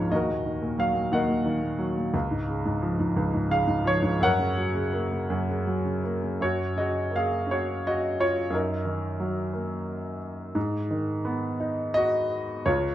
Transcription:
grand piano
Already playing: G#1 C#2 G#2 C#3 F3 C#5 F5
0.11 D#2 F#4 A#4 D#5
0.29 A#2
0.45 D#3
0.62 A#2
0.78 F#3 F5
0.95 A#2
1.12 D#2 A#4 D#5 F#5
1.29 A#2
1.45 D#3
1.62 A#2
1.79 F#3
1.97 A#2
2.14 C#2
2.31 G#2
2.48 C#3
2.65 G#2
2.82 F3
2.99 G#2
3.16 C#2
3.34 G#2
3.49 C#3 F5
3.67 G#2
3.84 F3 C#5
4.02 G#2
4.21 F#2 A#4 C#5 F#5
4.40 C#3
4.57 F#3
4.75 C#3
4.93 A#3
5.11 C#3
5.30 F#2
5.49 C#3
5.67 F#3
5.85 C#3
6.04 A#3
6.22 C#3
6.41 F#2 F#4 C#5
6.76 C#3 F#4 D#5
7.11 A#3
7.16 G#4 F5
7.47 C#4
7.51 F#4 C#5
7.87 F#4 D#5
8.20 F4 C#5
8.50 F#2
8.55 D#4 A#4
8.85 D#3
9.20 F#3
9.53 A#3
10.55 G#2
10.91 D#3
11.25 B3
11.60 D#4
11.94 F#4 D#5
12.66 C#2 F4 C#5

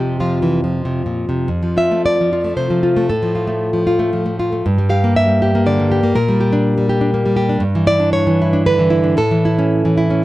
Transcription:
nylon-string guitar
Already playing: F2 F3 G4
0.00 C3
0.20 F3 F4
0.42 E3
0.64 F3
0.85 C3
1.06 A#2
1.29 C3
1.48 F2
1.63 F3
1.77 F4 E5
1.91 A3
2.06 D5
2.21 F3
2.33 F4
2.44 A3
2.57 C3 C5
2.70 F3
2.83 F4
2.96 A3
3.10 A2 A4
3.23 F3
3.35 F4
3.47 A3
3.73 F3
3.87 F4
3.99 A3
4.13 F3
4.26 A3
4.39 F4
4.52 A3
4.66 G2
4.78 G3
4.89 G4 F5
5.04 A#3
5.16 E5
5.28 G3
5.42 G4
5.55 A#3
5.66 D3 D5
5.80 G3
5.92 G4
6.03 A#3
6.15 A#2 A#4
6.28 G3
6.41 G4
6.53 D4
6.78 G3
6.89 G4
7.01 D4
7.14 A#3
7.26 G3
7.36 G4
7.49 D4
7.60 G2
7.75 E3
7.87 E4 D5
8.00 D4
8.13 C#5
8.27 E3
8.42 E4
8.53 D4
8.66 D3 B4
8.79 E3
8.90 E4
9.04 D4
9.17 A2 A4
9.31 E3
9.45 E4
9.59 C#4
9.85 E3
9.98 E4
10.10 C#4

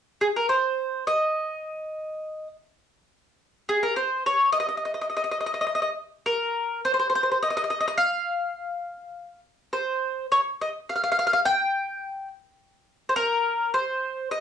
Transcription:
mandolin
0.21 G#4
0.36 A#4
0.49 C5
1.07 D#5
3.69 G#4
3.83 A#4
3.96 C5
4.26 C#5
4.53 D#5
4.60 D#5
4.69 D#5
4.77 D#5
4.85 D#5
4.94 D#5
5.02 D#5
5.10 D#5
5.17 D#5
5.24 D#5
5.31 D#5
5.41 D#5
5.46 D#5
5.54 D#5
5.61 D#5
5.75 D#5
5.82 D#5
6.26 A#4
6.85 C5
6.94 C5
6.99 C5
7.10 C5
7.15 C5
7.23 C5
7.32 C5
7.43 D#5
7.50 D#5
7.57 D#5
7.64 D#5
7.70 D#5
7.80 D#5
7.88 D#5
7.98 F5
9.73 C5
10.32 C#5
10.61 D#5
10.89 F5
10.96 F5
11.04 F5
11.12 F5
11.19 F5
11.27 F5
11.33 F5
11.45 G5
13.09 C5
13.16 A#4
13.74 C5
14.31 D#5

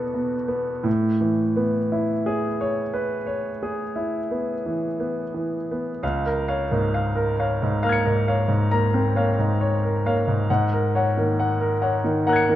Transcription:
grand piano
Already playing: E2 B2 B3 F#4 A4 B4 D5
0.14 B2
0.48 B3
0.84 A2
1.21 E3
1.56 B3
1.92 E4
2.26 G#4
2.61 C#5
2.94 B4
3.27 C#5
3.63 G#4
3.96 E4
4.31 B3
4.66 E3
5.00 B3
5.34 E3
5.71 B3
6.03 C#2 F5
6.26 A#4
6.48 C#5 F5
6.71 G#2 A#3
6.94 F5
7.16 A#4
7.39 C#5 F5
7.62 G#2
7.83 A#3 F5 A#5 F6
7.89 G#6 C#7
8.06 G#2 A#4
8.28 C#5 F5
8.48 G#2
8.71 A#3 A#5
8.94 C4 A#4
9.16 A#3 C#5 F5
9.39 G#2
9.61 C#5
9.84 A#4
10.05 A#3 C#5 F5
10.28 G#2
10.50 G#2 F#5
10.73 A#4
10.95 C#5 F#5
11.17 D#3 A#3
11.40 F#5
11.60 A#4
11.82 C#5 F#5
12.04 D#3
12.27 A#3 F#5 A#5 F#6
12.33 G#6 C#7
12.49 D#3 A#4

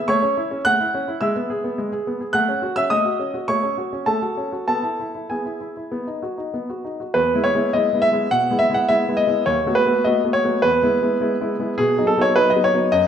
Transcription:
grand piano
0.08 A3 C#5 C#6
0.22 C#4
0.37 E4
0.51 C#4
0.65 A3 F#5 F#6
0.80 E4
0.94 C#4
1.08 E4
1.21 G#3 E5 E6
1.36 B3
1.50 G#4
1.64 B3
1.78 G#3
1.92 G#4
2.07 B3
2.21 G#4
2.33 A3 F#5 F#6
2.48 C#4
2.62 F#4
2.76 C#4 E5 E6
2.90 A3 D#5 D#6
3.05 F#4
3.19 C#4
3.34 F#4
3.48 A3 C#5 C#6
3.63 C#4
3.78 F#4
3.93 C#4
4.06 A3 A4 A5
4.22 F#4
4.37 C#4
4.52 F#4
4.68 B3 A4 A5
4.83 E4
5.00 E4
5.15 E4
5.30 B3 G#4 G#5
5.46 E4
5.61 E4
5.77 E4
5.92 B3
6.07 D#4
6.23 F#4
6.38 D#4
6.54 B3
6.70 F#4
6.85 D#4
7.00 F#4
7.14 E2 B4
7.34 G#3 B3 E4
7.44 C#5
7.55 G#3 B3 E4
7.73 G#3 B3 E4 D#5
7.93 G#3 B3 E4
8.02 E5
8.12 G#3 B3 E4
8.31 B2 F#5
8.51 G#3 B3 E4
8.59 E5
8.70 G#3 B3 E4
8.74 F#5
8.89 G#3 B3 E4 E5
9.09 G#3 B3 E4
9.17 D#5
9.27 G#3 B3 E4
9.46 D#2 C#5
9.66 A3 B3 F#4
9.75 B4
9.86 A3 B3 F#4
10.04 A3 B3 F#4 D#5
10.24 A3 B3 F#4
10.33 C#5
10.44 A3 B3 F#4
10.62 E2 B4
10.82 G#3 B3 E4
11.02 G#3 B3 E4
11.20 G#3 B3 E4
11.41 G#3 B3 E4
11.59 G#3 B3 E4
11.78 B2 G#4
11.98 F#3 B3 D#4
12.07 A4
12.18 F#3 B3 D#4 C#5
12.36 F#3 B3 D#4 B4
12.50 D#5
12.56 F#3 B3 D#4
12.64 C#5
12.73 F#3 B3 D#4
12.92 F#2 D#5

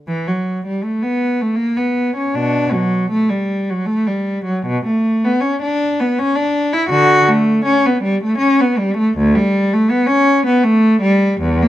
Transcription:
cello
0.07 E3
0.27 F#3
0.67 G3
0.83 A3
1.03 B3
1.42 A3
1.56 A#3
1.77 B3
2.16 C#4
2.35 B2 D4
2.73 F#3
3.11 A3
3.30 G3
3.70 F#3
3.86 A3
4.07 G3
4.45 F#3
4.66 B2
4.85 A3
5.25 B3
5.41 C#4
5.62 D4
6.00 B3
6.19 C#4
6.36 D4
6.73 E4
6.89 D3 F#4
7.28 A3
7.65 C#4
7.86 B3
8.03 G3
8.24 A3
8.38 C#4
8.61 B3
8.78 G3
8.97 A3
9.18 D2
9.35 G3
9.73 A3
9.90 B3
10.07 C#4
10.46 B3
10.63 A3
11.02 G3
11.41 E2
11.62 A#3

